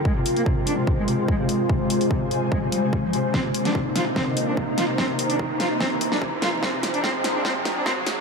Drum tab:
HH |--xx--x---x---x-|--xx--x---x---x-|--xx--x---x---x-|--xx--x---x---x-|
SD |----------------|----------------|o--o--o-o-----o-|o-----o-o--o--o-|
BD |o---o---o---o---|o---o---o---o---|o---o---o---o---|o---o---o---o---|

HH |--xx--x---x---x-|
SD |o-o-o-o-o-o-o-o-|
BD |o---o---o---o---|